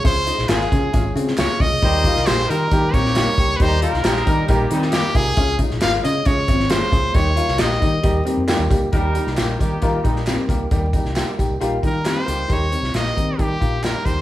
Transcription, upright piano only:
X:1
M:4/4
L:1/8
Q:1/4=135
K:Ebmix
V:1 name="Upright piano"
[A,DFA] [A,DFA] [A,DFB] [A,DFA] [A,DFA] [A,DFA] [A,DFA] [A,DFA] | [G,B,EG] [G,B,EB] [G,B,EG] [G,B,EG] [G,B,EG] [B,E] [G,B,EG] [G,B,EG] | [G,B,EG] [G,B,EG] [G,B,EG] [G,B,EG] [G,B,EG] [G,B,EG] [G,B,EG] [G,B,EF] | [A,DFA] [A,DFA] [A,DFB] [A,DFA] [A,DFA] [A,DFA] [A,DFA] [A,DFA] |
[G,B,EG] [G,B,EF] [G,B,EG] [G,B,EG] [G,B,EG] [G,B,EG] [G,B,EG] [G,B,EG] | [G,B,EG] [G,B,EG] [G,B,EG] [G,B,EB] [G,B,EB] [G,B,EG] [G,B,EG] [G,B,EG] | [G,B,EG] [G,B,EG] [G,B,EG] [G,B,EG] [G,B,EG] [G,B,EG] [G,B,EG] [G,B,EG] | [G,B,EG] [G,B,EB] [G,B,EG] [G,B,EG] [G,B,EG] [G,B,EG] [G,B,EG] [G,B,EG] |]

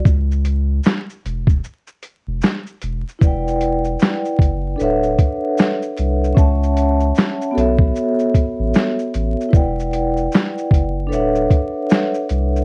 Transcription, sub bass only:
X:1
M:4/4
L:1/16
Q:"Swing 16ths" 1/4=76
K:Edor
V:1 name="Sub bass" clef=bass
C,,4 z2 E,,,2 z3 E,,, z2 E,,, z | E,,,4 z2 F,,,2 D,,,2 z4 =C,,2 | C,,4 z2 B,,,2 z3 A,,, z2 A,,, z | E,,,4 z2 F,,,2 D,,,2 z4 =C,,2 |]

